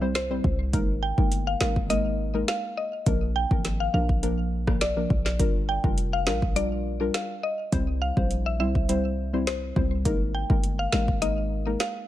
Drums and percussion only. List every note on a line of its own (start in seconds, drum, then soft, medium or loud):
0.15 snare loud
0.15 closed hi-hat medium
0.44 kick loud
0.73 kick loud
0.73 closed hi-hat medium
1.18 kick loud
1.32 closed hi-hat medium
1.61 snare loud
1.76 kick medium
1.90 closed hi-hat medium
2.48 snare loud
2.48 closed hi-hat medium
3.06 kick loud
3.06 closed hi-hat medium
3.51 kick loud
3.65 snare medium
3.65 closed hi-hat medium
4.09 kick medium
4.23 closed hi-hat medium
4.67 kick loud
4.67 cross-stick loud
4.81 snare loud
4.81 closed hi-hat medium
5.10 kick loud
5.26 snare medium
5.40 kick loud
5.40 closed hi-hat medium
5.84 kick loud
5.98 closed hi-hat medium
6.27 snare loud
6.42 kick medium
6.56 closed hi-hat medium
7.14 snare loud
7.14 closed hi-hat medium
7.72 kick loud
7.72 closed hi-hat medium
8.17 kick loud
8.31 closed hi-hat medium
8.75 kick medium
8.89 closed hi-hat medium
9.47 snare loud
9.47 closed hi-hat medium
9.76 kick loud
10.05 kick loud
10.05 closed hi-hat medium
10.50 kick loud
10.64 closed hi-hat medium
10.92 snare loud
11.08 kick loud
11.22 closed hi-hat medium
11.80 snare loud
11.80 closed hi-hat medium